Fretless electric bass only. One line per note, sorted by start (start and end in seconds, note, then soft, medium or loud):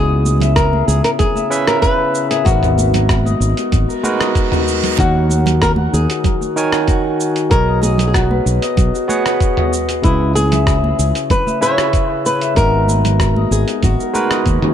0.00 0.82 C#2 medium
0.88 1.00 C#2 medium
2.46 3.34 G#1 medium
3.40 3.53 G#1 medium
3.72 3.84 G#1 medium
4.98 5.87 D#2 loud
5.93 6.05 D#2 medium
7.51 8.39 B1 medium
8.46 8.58 B1 medium
8.77 8.90 B1 medium
10.04 10.92 C#2 medium
10.99 11.11 C#2 medium
12.57 13.45 G#1 loud
13.51 13.63 G#1 medium
13.83 13.95 G#1 medium
14.46 14.58 D#2 loud
14.62 14.74 D#2 loud